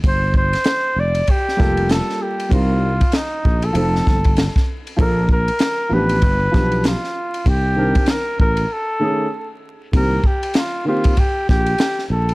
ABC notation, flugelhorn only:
X:1
M:4/4
L:1/16
Q:"Swing 16ths" 1/4=97
K:Cdor
V:1 name="Flugelhorn"
c2 c4 d2 G4 A2 G2 | F4 E3 A6- A z2 | B2 B4 _c6 F4 | G4 B2 B2 A6 z2 |
B2 G2 F2 F2 G2 G4 A2 |]